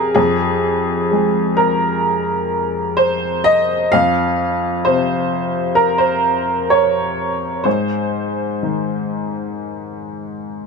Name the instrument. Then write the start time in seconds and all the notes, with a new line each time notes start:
upright piano
Already playing: F2 C3 G4 G#4 A#4
0.15 F2 G#4
1.11 G#3
1.57 A#4
2.97 C5
3.44 D#5
3.92 F2 F5
4.85 C3 C5
5.75 A#4
5.98 C5
6.70 C#5
7.64 G#2 C5
8.63 D#3